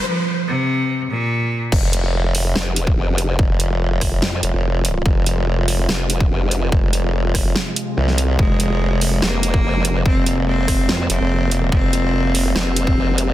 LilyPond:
<<
  \new Staff \with { instrumentName = "Cello" } { \time 4/4 \key f \minor \tempo 4 = 144 f8 r8 c4. bes,4. | r1 | r1 | r1 |
r1 | aes2 bes2 | c'8 r8 c'4. c'4. | c'2 c'2 | }
  \new Staff \with { instrumentName = "Supersaw synth" } { \clef bass \time 4/4 \key f \minor << { r1 | f'1~ | f'1~ | f'1~ |
f'1 | bes1~ | bes1~ | bes1 | } \\ { r1 | <c f aes>1~ | <c f aes>1~ | <c f aes>1~ |
<c f aes>1~ | <c f aes>1~ | <c f aes>1~ | <c f aes>1 | } >> }
  \new Staff \with { instrumentName = "Wobble bass" } { \clef bass \time 4/4 \key f \minor r1 | f,,2 r2 | f,,2 r8 f,,16 f,,4~ f,,16 | f,,2 r2 |
f,,2 r4 c,4 | f,,2 r2 | f,,2 r8 f,,16 f,,4~ f,,16 | f,,2 r2 | }
  \new Staff \with { instrumentName = "Wobble bass" } { \clef bass \time 4/4 \key f \minor r1 | r2 f,,4 f,,4 | r2 f,8 r4. | r2 f,,4 f,,4 |
r1 | r2 f,,4 f,,4 | r2 f,8 r4. | r2 f,,4 f,,4 | }
  \new DrumStaff \with { instrumentName = "Drums" } \drummode { \time 4/4 r4 r4 r4 r4 | <cymc bd>8 hh8 r8 hho8 <ss sn>8 hh16 bd16 r8 hh8 | bd8 hh8 r8 <hho bd ss>8 sn8 hh8 r8 hh8 | bd8 hh8 r8 hho8 <ss sn>8 hh16 bd16 r8 hh8 |
bd8 hh8 r8 <hho bd ss>8 sn8 hh8 r16 sn16 hh8 | bd8 hh8 r8 hho8 <ss sn>8 hh16 bd16 r8 hh8 | bd8 hh8 r8 <hho bd ss>8 sn8 hh8 r8 hh8 | bd8 hh8 r8 hho8 <ss sn>8 hh16 bd16 r8 hh8 | }
>>